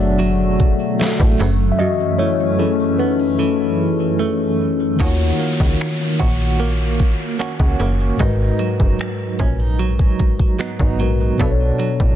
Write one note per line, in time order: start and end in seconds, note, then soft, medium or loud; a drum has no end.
0.00 0.76 F#1 medium
0.00 1.40 B2 medium
0.00 1.37 D3 medium
0.00 0.19 F#3 medium
0.00 1.35 F#3 medium
0.00 0.99 A3 medium
0.00 1.36 A3 medium
0.00 1.37 A3 medium
0.00 1.36 D4 medium
0.00 1.48 D4 medium
0.00 1.42 F#4 medium
0.00 1.42 G#4 medium
0.00 1.42 A4 medium
0.00 1.36 C#5 medium
0.00 1.42 D5 loud
0.00 1.42 E5 loud
0.00 1.42 F#5 loud
0.19 2.59 F#3 medium
0.19 closed hi-hat medium
0.60 kick medium
0.60 closed hi-hat medium
0.99 2.19 A3 medium
0.99 snare loud
0.99 closed hi-hat medium
1.20 1.36 A1 medium
1.20 kick loud
1.39 1.72 F#1 loud
1.39 1.78 F#2 medium
1.39 4.96 E3 medium
1.39 4.96 A3 medium
1.39 4.96 C#4 medium
1.39 open hi-hat medium
1.72 1.79 E5 medium
1.79 5.00 F#2 medium
1.79 2.18 F#4 medium
1.79 2.20 D#5 loud
2.18 4.18 A3 medium
2.18 2.57 E4 medium
2.18 2.60 C#5 loud
2.59 3.38 E3 medium
2.59 3.13 A3 medium
2.59 2.79 C#4 medium
2.59 3.13 E4 medium
2.59 3.13 G#4 medium
2.59 2.77 A4 medium
2.98 3.19 B3 medium
2.98 3.37 D#4 medium
2.98 3.40 B4 medium
3.19 5.08 C#4 medium
3.39 4.99 E3 medium
3.39 4.56 C#4 medium
3.39 4.55 A4 medium
3.80 4.16 A3 soft
3.80 4.16 E4 medium
3.80 4.16 G#4 soft
4.19 5.08 A3 medium
4.96 8.14 D#3 medium
4.96 8.50 D#3 medium
4.96 8.15 A#3 medium
4.96 kick loud
4.96 closed hi-hat medium
4.96 downlifter medium
5.00 5.32 D#2 loud
5.00 8.16 F4 medium
5.00 6.19 F#4 medium
5.00 8.17 F#4 medium
5.04 8.18 C#5 medium
5.39 6.58 A#3 medium
5.39 closed hi-hat medium
5.60 5.76 C#2 medium
5.60 kick loud
5.80 finger snap loud
5.80 closed hi-hat medium
6.19 7.16 A#1 medium
6.19 7.40 F#4 medium
6.19 kick medium
6.19 closed hi-hat medium
6.60 7.38 A#3 medium
6.60 closed hi-hat medium
6.99 kick medium
6.99 closed hi-hat medium
7.39 7.78 A#3 medium
7.39 8.20 C#4 medium
7.39 10.91 F#4 medium
7.39 finger snap loud
7.39 closed hi-hat medium
7.60 7.76 C#2 medium
7.60 kick loud
7.80 8.12 F#1 loud
7.80 8.28 A#3 medium
7.80 closed hi-hat medium
8.16 8.52 G#1 loud
8.16 10.94 G#2 medium
8.16 11.40 G#2 medium
8.16 10.95 G#3 medium
8.16 kick loud
8.16 closed hi-hat medium
8.20 9.39 D#4 medium
8.20 10.96 F#4 medium
8.20 10.97 A#4 medium
8.24 10.98 B4 medium
8.59 9.79 F#3 medium
8.59 closed hi-hat medium
8.80 8.96 F#1 medium
8.80 kick loud
8.99 finger snap loud
8.99 closed hi-hat medium
9.39 10.36 A#1 medium
9.39 9.60 C#4 medium
9.39 kick medium
9.39 closed hi-hat medium
9.60 10.59 D#4 medium
9.79 10.59 F#3 medium
9.79 closed hi-hat medium
9.99 kick medium
10.19 kick medium
10.19 closed hi-hat medium
10.40 kick medium
10.59 10.99 F#3 medium
10.59 12.16 B3 medium
10.59 11.40 D#4 medium
10.59 finger snap loud
10.59 closed hi-hat medium
10.79 11.02 G#1 medium
10.79 kick loud
10.98 11.32 A#1 medium
10.98 11.39 G#2 medium
10.98 11.79 F#3 medium
10.98 11.39 G#3 medium
10.98 11.40 F#4 medium
10.98 11.41 A#4 medium
10.98 11.41 B4 medium
10.98 closed hi-hat medium
11.36 11.72 B1 loud
11.36 12.16 B2 medium
11.36 12.16 B3 medium
11.36 12.16 D4 medium
11.36 kick loud
11.36 closed hi-hat medium
11.40 12.16 D4 medium
11.40 12.16 A4 medium
11.45 11.49 B4 medium
11.51 12.16 C#5 medium
11.79 12.16 F#3 medium
11.79 closed hi-hat medium
12.00 12.16 A1 medium
12.00 kick loud